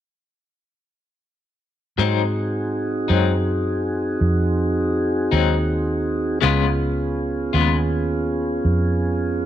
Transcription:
1.98 clean electric guitar G#2 F#3 C4 D#4, fingered electric bass G#2, tonewheel organ C4 D#4 F#4 G#4
3.08 fingered electric bass F#2, clean electric guitar G#2 F#3 C4 D#4
4.21 fingered electric bass F2
5.32 fingered electric bass D#2, clean electric guitar G#2 F#3 C4 D#4
6.41 fingered electric bass C#2, clean electric guitar C#3 G#3 B3 F4, tonewheel organ B3 C#4 F4 G#4
7.53 fingered electric bass D#2, clean electric guitar C#3 G#3 B3 F4
8.65 fingered electric bass F2

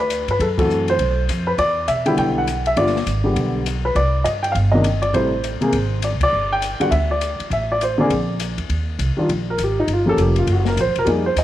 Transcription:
Already playing: upright bass D2
0.00 grand piano B4
0.10 hi-hat pedal, ride
0.28 upright bass G2, grand piano B4, ride
0.39 upright bass F#2, grand piano A4, kick, ride
0.57 grand piano E3 A3 C4 F#4 A4, kick, ride
0.70 hi-hat pedal
0.88 grand piano C5, ride
0.99 upright bass B1, kick, ride
1.29 upright bass F2, hi-hat pedal, ride
1.47 grand piano B4
1.58 upright bass E2, grand piano D5, kick, ride
1.88 upright bass B2, grand piano E5, hi-hat pedal, ride
2.06 grand piano D3 G3 B3 E4 G5, ride
2.17 upright bass B1, grand piano G5, kick, ride
2.38 grand piano F#5
2.47 hi-hat pedal, ride
2.66 grand piano E5, ride
2.76 upright bass G1, grand piano D3 G3 B3 F4 D5, kick, ride
2.87 snare
2.96 snare
3.06 upright bass G#1, hi-hat pedal, ride
3.24 grand piano D3 G3 B3 G4
3.36 upright bass B1, kick, ride
3.66 hi-hat pedal, ride
3.85 grand piano B4
3.95 upright bass C2, grand piano D5, kick, ride
4.24 upright bass G2, grand piano D#5, hi-hat pedal, ride
4.43 grand piano G5, ride
4.52 upright bass G1, grand piano F5, kick, ride
4.72 grand piano C3 D#3 A#3 D4 D#5
4.84 hi-hat pedal, ride
5.02 grand piano D5, ride
5.13 upright bass A1, grand piano C3 G3 A3 E4 C5, kick, ride
5.44 hi-hat pedal, ride
5.61 grand piano C3 G#3 A#3 G#4, muted upright bass stroke, ride
5.73 upright bass G#1, kick, ride
6.02 grand piano D5, hi-hat pedal, ride
6.12 upright bass C2
6.21 upright bass D2, grand piano D5, kick, ride
6.33 upright bass G1
6.53 grand piano G5
6.62 hi-hat pedal, ride
6.80 grand piano D3 G3 B3 F#4 F#5, muted upright bass stroke, ride
6.91 upright bass D2, grand piano E5, kick, ride
7.11 grand piano D5
7.21 hi-hat pedal, ride
7.40 muted upright bass stroke, ride
7.50 upright bass A1, grand piano E5, kick, ride
7.72 grand piano D5
7.81 grand piano C5, hi-hat pedal, ride
7.98 grand piano D3 A#3 C4 G#4 D5
8.10 upright bass A#1, kick, ride
8.40 hi-hat pedal, ride
8.58 upright bass E2, ride
8.69 upright bass D#2, kick, ride
8.99 upright bass C2, kick, hi-hat pedal, ride
9.17 grand piano D#3 G3 D4 F4
9.29 upright bass A#1, kick, ride
9.50 grand piano A#4
9.58 upright bass G#1, kick, hi-hat pedal, ride
9.64 grand piano G4
9.80 grand piano D#4
9.88 upright bass G1, kick, ride
9.93 grand piano F4
10.06 grand piano F3 A#3 C#4 G4 A4
10.17 upright bass F1, kick, hi-hat pedal, ride
10.22 grand piano G4
10.36 grand piano F4, ride
10.47 upright bass F#1, kick, ride
10.52 grand piano F#4
10.65 grand piano A#4, snare
10.77 upright bass A#1, grand piano C5, kick, hi-hat pedal, ride
10.86 upright bass F#1
10.96 upright bass E1, grand piano A#4, ride
11.04 upright bass F2, grand piano G3 A#3 D#4 G4 G#4, kick, ride
11.26 grand piano C5
11.36 upright bass D#2, grand piano D#5, kick, hi-hat pedal, ride

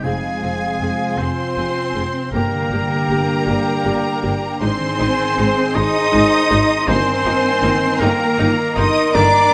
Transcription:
Already playing: harp C4 C5 C6, french horn section C4
0.03 double bass section F1, harp F2, cello section G#3, viola section C4 G#4, french horn section F4, oboe G#4, violin section G#4 G#5, flute section F5
0.22 harp C3
0.42 double bass section F1, harp C4, viola section C4 G#4
0.61 harp F4
0.80 double bass section F1, viola section C4 G#4, harp C5
1.00 harp F4
1.17 double bass section F1, cello section C4, viola section C4 G#4, oboe C5, violin section C5 C6, harp F5, flute section G#5
1.38 harp C6
1.56 double bass section F1, viola section C4 G#4, harp F5
1.75 harp C5
1.95 double bass section F1, viola section C4 G#4, harp F4
2.13 harp C4
2.31 double bass section G1, harp G2, french horn section G3 G4, cello section A#3, viola section A#3 G4, oboe A#4, violin section A#4 A#5, flute section G5
2.51 harp D3
2.70 double bass section G1, harp A#3, viola section A#3 G4
2.89 harp D4
3.08 double bass section G1, viola section A#3 G4, harp G4
3.46 double bass section G1, viola section A#3 G4, harp D5
3.84 double bass section G1, viola section A#3 G4, harp D5
4.22 double bass section G1, viola section A#3 G4, harp G4
4.41 harp D4
4.60 double bass section G#1, harp G#2, french horn section D#3 G#4, viola section G#3 D#4, cello section C4, oboe C5, violin section C5 C6, flute section G#5
4.79 harp D#3
4.98 double bass section G#1, harp G#3, viola section G#3 D#4
5.17 harp C4
5.37 double bass section G#1, viola section G#3 D#4
5.56 harp G#4
5.75 double bass section G#1, viola section G#3 D#4, cello section D#4, harp C5, oboe D#5, violin section D#5 D#6, flute section C6
6.12 double bass section G#1, viola section G#3 D#4, harp C5
6.49 double bass section G#1, viola section G#3 D#4
6.68 harp C4
6.87 double bass section G1, harp G2, french horn section D#3 A#4, viola section A#3 D#4, cello section C4, violin section C5 C6, oboe C5, flute section G#5
7.24 double bass section G1, harp A#3, viola section A#3 D#4
7.62 double bass section G1, harp D#3, viola section A#3 D#4
7.81 harp A#4
7.99 double bass section G1, cello section A#3, viola section A#3 D#4, oboe A#4, violin section A#4 A#5, flute section G5
8.38 double bass section G1, viola section A#3 D#4
8.75 double bass section G1, viola section A#3 D#4, harp A#3, cello section D#4, oboe D#5, violin section D#5 D#6, flute section C6
9.13 double bass section G1, harp G2, viola section D#3 A#3, cello section D4, violin section D5 D6, oboe D5, flute section A#5
9.33 harp A#3

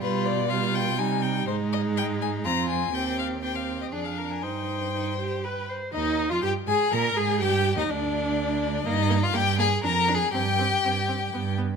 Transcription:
0.01 cello B2, viola G3, violin F4 B4
0.26 violin D5
0.49 viola G3, violin F4 F5
0.75 violin G5
0.98 cello C3, viola G3, violin D#4 G#5
1.22 violin G5
1.47 cello G#2, viola G#3, violin D#4 C5
1.73 violin D#5
1.97 violin G5
2.22 violin G#5
2.44 cello F2, viola C4, violin F4 A#5
2.69 violin G#5
2.92 cello D#2, viola C4, violin G4 G5
3.19 violin F5
3.43 viola C4, violin G4 G5
3.56 violin F5
3.82 violin D#5
3.92 cello F2, viola D4, violin G#4 D5
4.04 violin F5
4.18 violin A#4
4.31 violin G#5
4.41 cello G2, viola D#4, violin C5 G5
4.95 viola D#4
5.19 viola G4
5.44 violin B4, viola B4
5.69 viola C5
5.93 cello D#2, violin D#4 D#5, viola D#4
6.30 cello F2, viola F4, violin F4 F5
6.42 cello G2, viola G4, violin G4 G5
6.67 cello G#2, viola G#4, violin G#4 G#5
6.91 cello A#2, viola A#4, violin A#4 A#5
7.15 cello G#2, viola G#4, violin G#4 G#5
7.40 cello G2, viola G4, violin G4 G5
7.77 cello D#2, viola D#4, violin D#4 D#5
7.89 cello D2, viola D4, violin D4 D5
8.85 cello G2, viola A#3, violin D#4 D#5
9.10 viola A#3
9.23 violin F4 F5
9.34 cello G2, viola A#3, violin G4 G5
9.58 viola A#3, violin G#4 G#5
9.83 cello F2, viola D4, violin A#4 A#5
10.08 viola D4
10.15 violin G#4 G#5
10.32 cello G2, viola C4, violin G4 G5
10.59 viola C4
10.83 cello G2, viola C4
11.08 viola C4
11.34 cello G2, viola B3
11.58 viola B3

